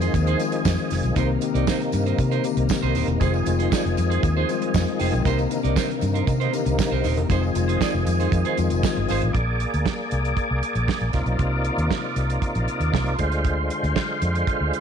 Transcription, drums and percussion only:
0.01 closed hi-hat, tambourine
0.14 kick, closed hi-hat, tambourine
0.27 closed hi-hat
0.40 closed hi-hat, tambourine
0.52 closed hi-hat, tambourine
0.65 kick, snare, tambourine
0.77 closed hi-hat
0.90 snare, open hi-hat, tambourine
1.03 closed hi-hat, tambourine
1.16 kick, closed hi-hat, tambourine
1.41 closed hi-hat, tambourine
1.55 closed hi-hat
1.67 kick, snare, tambourine
1.82 closed hi-hat
1.92 closed hi-hat, tambourine
2.06 closed hi-hat
2.18 kick, closed hi-hat, tambourine
2.32 closed hi-hat
2.44 closed hi-hat, tambourine
2.57 closed hi-hat
2.69 kick, snare, tambourine
2.95 open hi-hat, tambourine
3.08 closed hi-hat
3.20 kick, closed hi-hat, tambourine
3.34 tambourine
3.46 closed hi-hat, tambourine
3.60 closed hi-hat
3.72 kick, snare, tambourine
3.86 closed hi-hat
3.97 closed hi-hat, tambourine
4.12 closed hi-hat
4.23 kick, closed hi-hat, tambourine
4.49 closed hi-hat, tambourine
4.62 closed hi-hat
4.74 kick, snare, tambourine
4.87 closed hi-hat
5.00 open hi-hat, tambourine
5.13 closed hi-hat, tambourine
5.25 kick, closed hi-hat, tambourine
5.38 closed hi-hat, tambourine
5.51 closed hi-hat, tambourine
5.65 closed hi-hat
5.76 kick, snare, tambourine
5.91 closed hi-hat
6.01 closed hi-hat, tambourine
6.15 closed hi-hat
6.27 kick, closed hi-hat, tambourine
6.41 closed hi-hat
6.53 closed hi-hat, tambourine
6.66 closed hi-hat, tambourine
6.79 kick, snare, tambourine
7.04 open hi-hat, tambourine
7.17 closed hi-hat
7.30 kick, closed hi-hat, tambourine
7.43 tambourine
7.55 closed hi-hat, tambourine
7.69 closed hi-hat
7.81 kick, snare, tambourine
8.07 closed hi-hat, tambourine
8.20 closed hi-hat, tambourine
8.32 kick, closed hi-hat, tambourine
8.45 closed hi-hat
8.57 closed hi-hat, tambourine
8.70 closed hi-hat, tambourine
8.83 kick, snare, tambourine
8.96 closed hi-hat
9.08 snare, open hi-hat, tambourine
9.22 closed hi-hat
9.35 kick, closed hi-hat
9.60 closed hi-hat
9.74 closed hi-hat
9.86 kick, snare
10.11 closed hi-hat
10.25 closed hi-hat
10.37 kick, closed hi-hat
10.63 closed hi-hat
10.75 closed hi-hat
10.88 kick, snare
11.00 closed hi-hat
11.13 kick, snare, closed hi-hat
11.26 closed hi-hat
11.39 kick, closed hi-hat
11.64 closed hi-hat
11.78 closed hi-hat
11.91 kick, snare
12.16 closed hi-hat
12.30 closed hi-hat
12.42 kick, closed hi-hat
12.55 closed hi-hat
12.68 closed hi-hat
12.81 closed hi-hat
12.94 kick, snare
13.06 closed hi-hat
13.19 kick, closed hi-hat
13.32 closed hi-hat
13.44 kick, closed hi-hat
13.70 closed hi-hat
13.84 closed hi-hat
13.96 kick, snare
14.22 closed hi-hat
14.35 closed hi-hat
14.47 kick, closed hi-hat
14.73 closed hi-hat

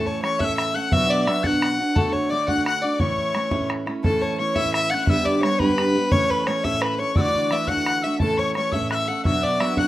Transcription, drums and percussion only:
0.07 bodhran
0.24 bodhran
0.40 bodhran
0.49 bodhran
0.58 bodhran
0.92 bodhran
1.27 bodhran
1.44 bodhran
1.53 bodhran
1.62 bodhran
1.96 bodhran
2.14 bodhran
2.48 bodhran
2.58 bodhran
2.66 bodhran
3.00 bodhran
3.17 bodhran
3.35 bodhran
3.51 bodhran
3.60 bodhran
3.70 bodhran
3.87 bodhran
4.04 bodhran
4.23 bodhran
4.56 bodhran
4.65 bodhran
4.74 bodhran
5.07 bodhran
5.26 bodhran
5.43 bodhran
5.60 bodhran
5.69 bodhran
5.78 bodhran
6.12 bodhran
6.31 bodhran
6.47 bodhran
6.65 bodhran
6.73 bodhran
6.82 bodhran
7.16 bodhran
7.35 bodhran
7.51 bodhran
7.68 bodhran
7.77 bodhran
7.86 bodhran
8.20 bodhran
8.38 bodhran
8.55 bodhran
8.72 bodhran
8.81 bodhran
8.91 bodhran
9.25 bodhran
9.43 bodhran
9.60 bodhran
9.77 bodhran

